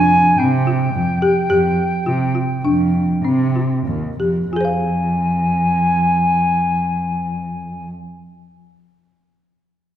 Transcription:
Already playing: F2 D4 G#5
0.38 C3 C4 G5
0.67 F4
0.94 F2
1.22 G4
1.50 F2 G4
2.06 C3 F4
2.35 F4
2.64 F2 D4
3.25 C3 C4
3.56 F4
3.87 D#2
4.19 F2 G4
4.51 F2 F4 G#5
4.56 G#4
4.61 C5
4.65 F5

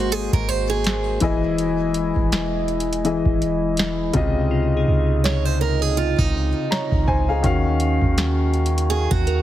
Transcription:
Already playing: G#1 G#3 A#3 F#4 A#4 C5
0.00 closed hi-hat
0.12 G#4, closed hi-hat
0.33 G#1 A#4, kick
0.49 C5, closed hi-hat
0.70 G#4
0.84 snare, closed hi-hat
1.20 E1 E3 G#3 E4 G#4 D#5, kick, closed hi-hat
1.58 closed hi-hat
1.94 closed hi-hat
2.16 E1, kick
2.32 snare, closed hi-hat
2.68 closed hi-hat
2.80 closed hi-hat
2.93 closed hi-hat
3.04 E3 E4 G#4 D#5, closed hi-hat
3.26 E1, kick
3.42 closed hi-hat
3.77 snare, closed hi-hat
4.13 C#2 C3 C#3 D#4 F4 D#5, kick, closed hi-hat
4.51 F4
4.77 G#4
4.88 C#2
5.24 C#5, snare
5.45 C5
5.61 A#4
5.82 G#4
5.97 F4
6.18 C#2 D#4, kick
6.71 C#5 A#5, snare
6.92 C#2, kick
7.08 C#2 C5 G#5, kick
7.29 G#4 F5
7.43 D#2 D#3 C#4 F#4 F5, kick, closed hi-hat
7.80 closed hi-hat
8.02 D#2, kick
8.18 snare, closed hi-hat
8.54 closed hi-hat
8.66 closed hi-hat
8.78 closed hi-hat
8.90 G#4, closed hi-hat
9.11 D#2 F#4, kick
9.27 A#4, closed hi-hat

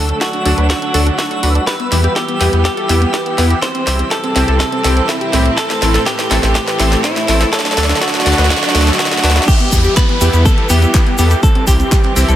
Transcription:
Already playing: D2 D3 F#3 A3 D4 F#4 A4 E6, riser
0.09 D4, closed hi-hat
0.21 F#4 A4, kick, snare, closed hi-hat
0.33 D4, closed hi-hat
0.45 D2 D3 D4 F#4 A4, open hi-hat
0.58 D2 B4, closed hi-hat
0.70 D4 F#4, kick, snare, closed hi-hat
0.82 D4, closed hi-hat
0.94 D2 D3 D4 F#4 A4, open hi-hat
1.07 D4, closed hi-hat
1.18 D3 D4 F#4 A4, kick, snare, closed hi-hat
1.31 F#4, closed hi-hat
1.43 D2 D4 F#4 B4, open hi-hat
1.55 D4, closed hi-hat
1.67 E3 G3 B3 G4 B4, kick, snare, closed hi-hat
1.80 B3, closed hi-hat
1.92 E2 E3 B3 E4 G4, snare, open hi-hat
2.04 G4, closed hi-hat
2.16 B3 G4, kick, snare, closed hi-hat
2.28 B3, closed hi-hat
2.41 E2 E3 B3 E4 G4, snare, open hi-hat
2.53 E2 B3, closed hi-hat
2.65 B3 G4, kick, snare, closed hi-hat
2.77 A4, closed hi-hat
2.89 E2 E3 B3 E4 G4, snare, open hi-hat
3.02 B3, closed hi-hat
3.14 G4 B4, kick, snare, closed hi-hat
3.26 B3, closed hi-hat
3.38 E2 B3 E4 G4, snare, open hi-hat
3.50 G4, closed hi-hat
3.62 G3 C4 C5, kick, snare, closed hi-hat
3.75 C4, closed hi-hat
3.87 C2 C3 C4 E4 G4, kick, snare, open hi-hat
3.99 C4, closed hi-hat
4.11 G4 A4, kick, snare, closed hi-hat
4.24 C4, closed hi-hat
4.36 C2 C3 C4 E4 G4, snare, open hi-hat
4.48 C2 A4, closed hi-hat
4.60 C4 A4, kick, snare, closed hi-hat
4.72 C4, closed hi-hat
4.84 C2 C3 C4 E4 G4 A4, snare, open hi-hat
4.97 C4, closed hi-hat
5.09 C4 E4, kick, snare, closed hi-hat
5.21 G4, closed hi-hat
5.33 C2 A2 C4 E4 G4, snare, open hi-hat
5.46 C4, closed hi-hat
5.57 E3 A3 A4, kick, snare, closed hi-hat
5.70 A3, snare, closed hi-hat
5.82 A1 A2 A3 C4 E4 A4, snare, open hi-hat
5.94 A4, snare, closed hi-hat
6.06 A3 G4, kick, snare, closed hi-hat
6.19 A3, snare, closed hi-hat
6.31 A1 A2 C4 E4 A4, snare, open hi-hat
6.43 A1 A3, snare, closed hi-hat
6.55 A3 G4, kick, snare, closed hi-hat
6.67 B4, snare, closed hi-hat
6.79 A1 A2 A3 C4 E4 A4, snare, open hi-hat
6.92 A3, snare, closed hi-hat
7.04 E4 C5, kick, snare, closed hi-hat
7.16 A3, snare, closed hi-hat
7.28 A1 A3 C4 E4 A4, snare, open hi-hat
7.41 A4, snare, closed hi-hat
7.53 F#3 D4 A4, kick, snare, closed hi-hat, noise sweep
7.59 snare
7.65 D4, snare, closed hi-hat
7.71 snare
7.77 D2 D3 D4 F#4 A4, kick, snare, open hi-hat
7.83 snare
7.89 D4, snare, closed hi-hat
7.95 snare
8.01 F#4 A4, kick, snare, closed hi-hat
8.08 snare
8.14 D4, snare, closed hi-hat
8.20 snare
8.26 D2 D3 D4 F#4 A4, snare, open hi-hat
8.32 snare
8.38 D2 B4, snare, closed hi-hat
8.44 snare
8.50 D4 F#4, kick, snare, closed hi-hat
8.57 snare
8.63 D4, snare, closed hi-hat
8.69 snare
8.75 D2 D3 D4 F#4 A4, snare, open hi-hat
8.81 snare
8.87 D4, snare, closed hi-hat
8.93 snare
8.99 D3 D4 F#4 A4, kick, snare, closed hi-hat
9.05 snare
9.11 F#4, snare, closed hi-hat
9.17 snare
9.23 D2 D4 F#4 B4, snare, open hi-hat
9.30 snare
9.36 D4, snare, closed hi-hat
9.42 snare
9.48 E3 G3 B3 G4, kick, closed hi-hat, crash, downlifter, shaker
9.60 B3, closed hi-hat
9.72 E2 E3 B3 E4 G4, kick, open hi-hat, shaker
9.84 G4, closed hi-hat, shaker
9.96 B3 B4, kick, clap, closed hi-hat, shaker
10.09 B3, closed hi-hat
10.21 E2 E3 B3 E4 G4, open hi-hat, shaker
10.33 E2 B3, closed hi-hat, shaker
10.45 B3 A4, kick, closed hi-hat, shaker
10.58 A4, closed hi-hat
10.69 E2 E3 B3 E4 G4, open hi-hat, shaker
10.82 B3, closed hi-hat, shaker
10.94 E3 B3 E4 G4 B4, kick, clap, closed hi-hat, shaker
11.07 B3, closed hi-hat
11.18 E2 B3 E4 G4 A4, open hi-hat, shaker
11.30 G4, closed hi-hat, shaker
11.43 C4 A4, kick, closed hi-hat, shaker
11.55 C4, closed hi-hat
11.67 C2 C3 C4 E4 G4, kick, open hi-hat, shaker
11.80 C4, closed hi-hat, shaker
11.92 G4, kick, clap, closed hi-hat, shaker
12.04 C4, clap, closed hi-hat
12.16 C2 C3 C4 E4 G4, open hi-hat, shaker
12.29 C2 A4, closed hi-hat, shaker

